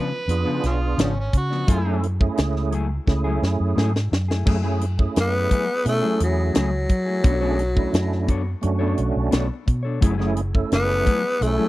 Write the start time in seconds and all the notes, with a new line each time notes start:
Already playing: C#3 F3 B3 D4 B4
0.11 muted clean electric guitar stroke
0.28 F2 B3 D4 F4 G#4, muted clean electric guitar stroke, closed hi-hat
0.45 C#3 F3 B3 D4
0.63 B1 C#4 F4, muted clean electric guitar stroke, snare, closed hi-hat
0.97 G#1 C#3 F3 B3 C#4 D4, snare, closed hi-hat
1.15 muted clean electric guitar stroke
1.20 C#4
1.33 C#3, muted clean electric guitar stroke, kick, closed hi-hat
1.37 F#4
1.50 F3 B3 D4, snare
1.67 F#2 F#3 A3 C#4 E4 G#4, kick, closed hi-hat
1.85 F#3 A3 C#4 E4 G#4 A4
2.02 muted clean electric guitar stroke, closed hi-hat
2.20 A3 C#4 E4 G#4, muted clean electric guitar stroke, kick
2.37 C#2, snare, closed hi-hat
2.55 muted clean electric guitar stroke, snare
2.71 F#3 A3 E4 G#4, closed hi-hat
2.89 muted clean electric guitar stroke
3.06 C#2 A3 C#4 E4 G#4, muted clean electric guitar stroke, kick, snare
3.24 F#3 A3 E4 G#4
3.41 F#2, muted clean electric guitar stroke, snare
3.60 F#2
3.75 G#2 F#3 A3 E4 G#4, snare
3.93 muted clean electric guitar stroke, snare
4.11 F#2, muted clean electric guitar stroke, snare
4.28 A3 E4 G#4, snare
4.45 F#2 F#3 A3 C#4 E4 G#4, kick, crash
4.63 F#3 A3 C#4 E4 G#4
4.80 muted clean electric guitar stroke, closed hi-hat
4.98 A3 C#4 E4 G#4, muted clean electric guitar stroke, kick
5.16 F#2, snare, closed hi-hat
5.21 B3
5.32 muted clean electric guitar stroke
5.49 F#3 A3 E4 G#4, kick, closed hi-hat
5.67 muted clean electric guitar stroke
5.85 B2 A3 C#4 E4 G#4, muted clean electric guitar stroke, closed hi-hat
5.89 A3
6.02 F#3 A3 E4 G#4
6.20 E2 F#3, muted clean electric guitar stroke, closed hi-hat
6.54 C#2 F#3 A3 E4 G#4, snare, closed hi-hat
6.58 F#3
6.72 muted clean electric guitar stroke
6.89 F#3, muted clean electric guitar stroke, kick, closed hi-hat
7.06 A3 E4 G#4
7.23 B1 A3 B3 C#4 D4 F#4 A4 C#5, kick, closed hi-hat
7.41 A3 B3 C#4 D4 G#4 A4 C#5
7.58 muted clean electric guitar stroke, closed hi-hat
7.75 A3 C#4 D4 E4, muted clean electric guitar stroke, kick
7.93 F#2, snare, closed hi-hat
8.10 muted clean electric guitar stroke, snare
8.27 B3 D4 A4 C#5, kick, closed hi-hat
8.45 muted clean electric guitar stroke
8.61 F#2 A3 C#4 D4 F#4, muted clean electric guitar stroke, closed hi-hat
8.79 B3 D4 A4 C#5
8.97 B1, muted clean electric guitar stroke, closed hi-hat
9.16 B1
9.31 B1 B3 D4 A4 C#5, snare, closed hi-hat
9.49 muted clean electric guitar stroke
9.66 B2, muted clean electric guitar stroke, kick, closed hi-hat
9.83 D4 A4 C#5
10.01 F#1 F#3 A3 C#4 E4 G#4, kick, closed hi-hat
10.18 F#3 A3 C#4 E4 G#4, snare
10.36 muted clean electric guitar stroke, closed hi-hat
10.53 A3 C#4 E4 A4, muted clean electric guitar stroke, kick
10.72 F#1 B3, snare, closed hi-hat
10.88 muted clean electric guitar stroke, snare
11.05 F#3 A3 E4 G#4, kick, closed hi-hat
11.23 muted clean electric guitar stroke
11.40 B1 A3 C#4 E4 G#4, muted clean electric guitar stroke, closed hi-hat
11.58 F#3 A3 E4 G#4